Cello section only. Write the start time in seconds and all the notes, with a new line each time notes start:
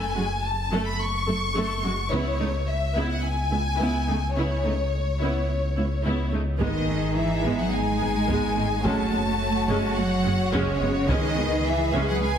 0.16 F#2
0.71 F#2
1.27 F#2
1.55 F#2
1.83 F#2
2.12 C#2
2.40 C#2
2.96 C#2
3.52 C#2
3.81 C#2
4.09 C#2
4.37 C#2
4.65 C#2
5.21 C#2
5.77 C#2
6.05 C#2
6.33 C#2
6.61 D#3
7.16 E3
7.59 F#3
7.73 G#3
8.85 A3
9.98 F#3
10.53 C#3
11.09 D#3
11.65 E3
12.07 F#3
12.21 G#3